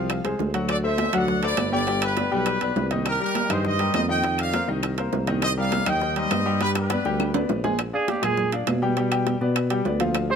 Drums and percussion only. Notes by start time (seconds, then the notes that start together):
0.10 high bongo, high conga, high timbale, claves
0.25 high bongo, high timbale
0.39 high bongo, low bongo, low timbale
0.54 high bongo, high timbale
0.68 high bongo, high conga, high timbale, claves
0.98 high bongo, high conga, high timbale, low timbale
1.13 high conga, low conga, high timbale, claves
1.28 high bongo, high conga, low conga
1.42 high bongo, high conga, high timbale
1.57 high bongo, low bongo, high conga, high timbale, low timbale, claves
1.72 high bongo, high conga
1.87 high bongo, high timbale
2.02 high timbale, claves
2.17 high bongo, high conga, high timbale, low timbale
2.32 high bongo
2.46 high bongo, high conga, high timbale, claves
2.61 high bongo, high conga, high timbale
2.76 high bongo, low bongo, low timbale
2.91 high bongo, high conga, high timbale
3.05 high bongo, high timbale, claves
3.21 high conga
3.35 high bongo, high conga, high timbale, low timbale
3.50 high bongo, high conga, low conga, high timbale, claves
3.65 high bongo, high conga, low conga
3.79 high bongo, high conga, high timbale
3.94 high bongo, low bongo, high conga, high timbale, low timbale, claves
4.09 high bongo, high conga
4.24 high bongo, high timbale
4.38 high timbale, claves
4.53 high bongo, high conga, high timbale, low timbale
4.68 high bongo, high conga
4.83 high bongo, high timbale, claves
4.98 high bongo, high timbale
5.13 high bongo, low bongo, low timbale
5.27 high bongo, high conga, high timbale
5.42 high bongo, high timbale, claves
5.72 high bongo, high conga, high timbale, low timbale
5.86 high conga, low conga, high timbale, claves
6.01 high bongo, high conga, low conga
6.16 high bongo, high conga, high timbale
6.31 high bongo, low bongo, high conga, high timbale, low timbale, claves
6.46 high bongo
6.61 high bongo, high timbale
6.75 high bongo, high timbale, claves
6.90 high bongo, high conga, high timbale, low timbale
7.05 low bongo, high conga
7.20 low bongo, high conga, high timbale, claves
7.34 low bongo, high timbale
7.49 low bongo, high conga, low timbale
7.64 low bongo, high conga, low timbale
7.79 high bongo, high timbale, claves
7.93 high conga
8.08 high bongo, high conga, high timbale, low timbale
8.23 high bongo, high conga, low conga, high timbale, claves
8.37 high bongo, high conga, low conga
8.52 high bongo, high conga, high timbale
8.67 high bongo, low bongo, high conga, high timbale, low timbale, claves
8.82 high bongo, high conga
8.97 high bongo, high conga, high timbale
9.11 high timbale, claves
9.27 high bongo, high conga, high timbale, low timbale
9.41 high bongo, high conga
9.56 high bongo, high timbale, claves
9.70 high bongo, high timbale
9.85 high bongo, low bongo, low timbale
10.00 high conga, high timbale
10.14 high bongo, high conga, high timbale, claves